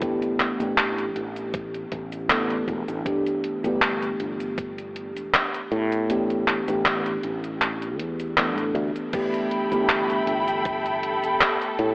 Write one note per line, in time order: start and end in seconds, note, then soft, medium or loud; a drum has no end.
0.00 0.52 A2 medium
0.00 0.55 E3 medium
0.00 0.55 A3 medium
0.00 0.55 B3 medium
0.00 0.56 D4 medium
0.00 0.56 G4 medium
0.00 kick loud
0.00 closed hi-hat medium
0.00 cabasa soft
0.22 closed hi-hat soft
0.22 cabasa soft
0.40 clap medium
0.40 closed hi-hat medium
0.59 1.08 A1 medium
0.59 2.25 E3 medium
0.59 2.25 A3 medium
0.59 2.26 B3 medium
0.59 2.26 D4 medium
0.59 2.27 G4 medium
0.59 closed hi-hat soft
0.59 cabasa medium
0.78 clap loud
0.78 closed hi-hat medium
0.78 cabasa soft
0.98 closed hi-hat soft
0.98 cabasa soft
1.16 1.85 A1 medium
1.16 closed hi-hat medium
1.36 closed hi-hat soft
1.36 cabasa medium
1.54 kick loud
1.54 closed hi-hat medium
1.54 cabasa soft
1.74 closed hi-hat soft
1.74 cabasa soft
1.92 2.61 A1 loud
1.92 kick medium
1.92 closed hi-hat medium
2.12 closed hi-hat soft
2.12 cabasa medium
2.29 3.01 E3 medium
2.29 3.01 A3 medium
2.29 3.02 B3 medium
2.29 3.02 D4 medium
2.29 3.02 A4 loud
2.29 clap loud
2.29 closed hi-hat medium
2.29 cabasa soft
2.50 closed hi-hat soft
2.50 cabasa soft
2.68 2.83 E1 loud
2.68 kick medium
2.68 closed hi-hat soft
2.88 3.01 A1 loud
2.88 closed hi-hat soft
2.88 cabasa medium
3.05 3.59 E3 medium
3.05 3.59 A3 medium
3.05 3.59 B3 medium
3.05 3.59 D4 medium
3.05 3.60 G4 medium
3.05 kick loud
3.05 closed hi-hat medium
3.05 cabasa soft
3.26 closed hi-hat soft
3.26 cabasa soft
3.44 closed hi-hat medium
3.63 4.12 G1 loud
3.63 6.05 E3 medium
3.63 6.05 A3 medium
3.63 6.06 B3 medium
3.63 6.06 D4 medium
3.63 6.06 G4 loud
3.63 closed hi-hat soft
3.63 cabasa medium
3.82 clap loud
3.82 closed hi-hat medium
3.82 cabasa soft
4.02 closed hi-hat soft
4.02 cabasa soft
4.20 5.16 G1 medium
4.20 closed hi-hat medium
4.40 closed hi-hat soft
4.40 cabasa medium
4.58 kick loud
4.58 closed hi-hat medium
4.58 cabasa soft
4.78 closed hi-hat soft
4.78 cabasa soft
4.96 closed hi-hat medium
5.16 5.29 E1 loud
5.16 closed hi-hat soft
5.16 cabasa medium
5.34 clap loud
5.34 closed hi-hat medium
5.34 cabasa soft
5.54 closed hi-hat soft
5.54 cabasa soft
5.72 6.60 A2 medium
5.72 closed hi-hat soft
5.92 closed hi-hat soft
5.92 cabasa medium
6.09 6.63 E3 medium
6.09 6.63 A3 medium
6.09 6.63 B3 medium
6.09 6.63 D4 medium
6.09 6.64 G4 medium
6.09 closed hi-hat medium
6.09 cabasa soft
6.30 closed hi-hat soft
6.30 cabasa soft
6.48 clap medium
6.48 closed hi-hat medium
6.66 7.16 A1 medium
6.66 8.32 E3 medium
6.66 8.33 A3 medium
6.66 8.33 B3 medium
6.66 8.34 D4 medium
6.66 8.34 G4 medium
6.66 closed hi-hat soft
6.66 cabasa medium
6.85 clap loud
6.85 closed hi-hat medium
6.85 cabasa soft
7.06 closed hi-hat soft
7.06 cabasa soft
7.23 7.99 A1 medium
7.23 closed hi-hat medium
7.44 closed hi-hat soft
7.44 cabasa medium
7.62 clap medium
7.62 closed hi-hat medium
7.62 cabasa soft
7.82 closed hi-hat soft
7.82 cabasa soft
7.99 8.58 E2 medium
7.99 closed hi-hat medium
8.20 closed hi-hat soft
8.20 cabasa medium
8.37 9.09 E3 medium
8.37 9.09 A3 medium
8.37 9.09 B3 medium
8.37 9.09 D4 medium
8.37 9.10 A4 medium
8.37 clap loud
8.37 closed hi-hat medium
8.37 cabasa soft
8.58 8.71 A2 medium
8.58 closed hi-hat soft
8.58 cabasa soft
8.75 8.90 D2 loud
8.75 closed hi-hat soft
8.96 closed hi-hat soft
8.96 cabasa medium
9.13 9.67 E3 medium
9.13 9.67 A3 medium
9.13 9.67 B3 medium
9.13 9.67 D4 medium
9.13 9.68 G4 medium
9.13 11.95 A4 medium
9.13 11.95 E5 medium
9.13 11.95 G5 medium
9.13 11.95 B5 medium
9.13 kick loud
9.13 closed hi-hat medium
9.13 crash medium
9.13 cabasa soft
9.34 closed hi-hat soft
9.34 cabasa soft
9.51 closed hi-hat medium
9.71 10.20 G1 medium
9.71 11.95 E3 medium
9.71 11.95 A3 medium
9.71 11.95 B3 medium
9.71 11.95 D4 medium
9.71 11.95 G4 loud
9.71 closed hi-hat soft
9.71 cabasa medium
9.89 clap loud
9.89 closed hi-hat medium
9.89 cabasa soft
10.10 closed hi-hat soft
10.10 cabasa soft
10.27 11.23 G1 medium
10.27 closed hi-hat medium
10.48 closed hi-hat soft
10.48 cabasa medium
10.65 kick loud
10.65 closed hi-hat loud
10.65 cabasa soft
10.86 closed hi-hat soft
10.86 cabasa soft
11.03 closed hi-hat medium
11.23 11.37 E1 loud
11.23 closed hi-hat soft
11.23 cabasa medium
11.41 clap loud
11.41 closed hi-hat loud
11.41 cabasa soft
11.62 closed hi-hat soft
11.62 cabasa soft
11.79 11.95 A2 medium
11.79 closed hi-hat soft